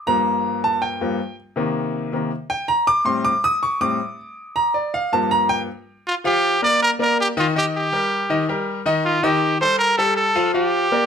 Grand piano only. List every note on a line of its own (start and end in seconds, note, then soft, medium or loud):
0.07 1.00 G2 medium
0.07 1.00 F3 soft
0.07 1.00 A#3 medium
0.07 0.59 A#5 loud
0.64 0.82 A5 medium
0.82 1.34 G5 medium
1.01 1.18 G2 medium
1.01 1.18 F3 medium
1.01 1.18 A#3 medium
1.56 2.11 C3 medium
1.56 2.11 D#3 medium
1.56 2.12 A#3 medium
2.13 2.30 C3 soft
2.13 2.30 D#3 soft
2.13 2.30 A#3 medium
2.50 2.68 G5 medium
2.68 2.87 A#5 loud
2.87 3.06 D6 loud
3.05 3.30 A2 medium
3.05 3.31 G3 medium
3.05 3.31 C4 medium
3.05 3.24 C6 medium
3.25 3.43 D6 loud
3.44 3.62 D#6 loud
3.63 3.81 C#6 medium
3.81 3.98 A2 medium
3.81 3.98 G3 soft
3.81 3.98 C4 medium
3.81 4.16 D6 loud
4.56 4.74 A#5 loud
4.74 4.93 D5 medium
4.94 5.12 F5 medium
5.12 5.65 G2 medium
5.12 5.66 F3 medium
5.12 5.66 A#3 medium
5.12 5.31 A5 loud
5.31 5.49 A#5 loud
5.49 5.61 G5 loud
6.24 6.55 F3 medium
6.24 6.55 F4 medium
6.24 6.55 F5 loud
6.62 6.93 A#3 medium
6.62 6.93 A#4 medium
6.62 6.93 D5 medium
6.99 7.30 A#3 medium
6.99 7.30 A#4 medium
6.99 7.30 D5 medium
7.37 7.52 D#3 loud
7.37 7.52 D#4 loud
7.37 7.52 D#5 loud
7.56 7.86 D#3 medium
7.56 7.86 D#4 medium
7.56 7.86 D#5 medium
7.92 8.23 G3 medium
7.92 8.23 G4 medium
7.92 8.23 A#4 medium
8.30 8.45 D#3 medium
8.30 8.45 D#4 medium
8.30 8.45 D#5 medium
8.49 8.79 G3 medium
8.49 8.79 G4 medium
8.49 8.80 A#4 medium
8.86 9.16 D#3 medium
8.86 9.17 D#4 loud
8.86 9.17 D#5 medium
9.23 9.54 D#3 medium
9.23 9.54 D#4 medium
9.23 9.54 D#5 loud
9.61 9.92 G3 medium
9.61 9.92 G4 medium
9.61 9.92 A4 medium
9.98 10.29 G3 medium
9.98 10.29 G4 medium
9.98 10.29 A4 medium
10.35 10.51 F3 medium
10.35 10.51 F4 loud
10.35 10.51 F5 loud
10.54 10.85 F3 medium
10.54 10.85 F4 medium
10.54 10.85 F5 medium
10.92 11.06 A#3 medium
10.92 11.06 A#4 medium
10.92 11.06 D5 medium